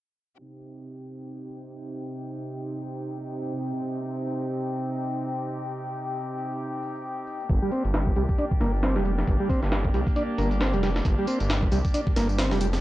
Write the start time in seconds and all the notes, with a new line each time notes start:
0.39 C3 C4 D#4 G4 G5, tambourine
1.50 tambourine
2.39 tambourine
2.52 tambourine
2.83 tambourine
3.06 tambourine
3.28 tambourine
3.41 tambourine
3.72 tambourine
3.85 tambourine
3.95 tambourine
4.17 tambourine
4.30 tambourine
4.39 tambourine
4.61 tambourine
4.74 tambourine
4.83 tambourine
5.05 tambourine
5.18 tambourine
5.28 tambourine
5.50 tambourine
5.62 tambourine
5.72 tambourine
5.94 tambourine
6.07 tambourine
6.16 tambourine
6.38 tambourine
6.51 tambourine
6.60 tambourine
6.83 tambourine
6.95 tambourine
7.05 tambourine
7.27 tambourine
7.40 tambourine
7.49 G1 A#3 D4, kick, closed hi-hat, tambourine
7.62 G3
7.72 C4, closed hi-hat, tambourine
7.85 G1, closed hi-hat, tambourine
7.94 snare, closed hi-hat
8.07 kick
8.16 C2 G3, closed hi-hat, tambourine
8.29 kick, tambourine
8.38 D4, closed hi-hat, tambourine
8.51 kick
8.60 G1 A#3, snare, closed hi-hat, tambourine
8.73 tambourine
8.83 C4, snare, closed hi-hat
8.96 F1 G3, snare
9.05 G3, closed hi-hat, tambourine
9.18 snare, tambourine
9.27 G1, kick, closed hi-hat, tambourine
9.40 G3
9.49 C4, kick, closed hi-hat, tambourine
9.62 G1, snare, tambourine
9.72 snare, closed hi-hat
9.85 kick
9.94 C2 G3, closed hi-hat, tambourine
10.07 kick, tambourine
10.16 D4, closed hi-hat, tambourine
10.38 G1 A#3, closed hi-hat, tambourine
10.51 closed hi-hat, tambourine
10.61 C4, snare, closed hi-hat, tambourine
10.73 F1 G3, closed hi-hat
10.83 G3, snare, closed hi-hat, tambourine
10.96 snare, tambourine
11.05 G1, kick, closed hi-hat, tambourine
11.18 G3
11.27 C4, closed hi-hat, tambourine
11.40 G1, closed hi-hat, tambourine
11.50 snare, closed hi-hat
11.63 kick
11.72 C2 G3, closed hi-hat, tambourine
11.85 kick, tambourine
11.94 D4, closed hi-hat, tambourine
12.07 kick
12.16 G1 A#3, snare, closed hi-hat, tambourine
12.29 tambourine
12.38 C4, snare, closed hi-hat, tambourine
12.51 F1 G3, snare
12.61 G3, closed hi-hat, tambourine
12.73 snare, tambourine